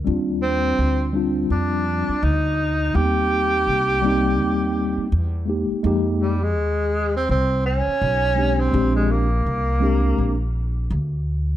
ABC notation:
X:1
M:4/4
L:1/16
Q:"Swing 16ths" 1/4=83
K:Eb
V:1 name="Tenor saxophone"
z2 C4 z2 D4 E4 | G12 z4 | z2 G, A,4 C C2 _D4- D C- | C A, B,8 z6 |]
V:2 name="Tine electric piano"
[G,CDF]6 [G,CDF]6 z4 | [G,B,_C=C^D]6 [G,B,CD]6 z2 [A,B,EG]2 | [A,B,EG]2 z12 [A,CDG]2 | [A,CDG]2 z4 [A,CDG]2 z8 |]
V:3 name="Upright bass" clef=bass
E,,4 D,,4 F,,3 z D,,4 | ^D,,4 C,,4 D,,3 z =E,,3 z | F,,4 E,,4 C,,3 z =B,,,4 | B,,,4 C,,4 B,,,4 D,,4 |]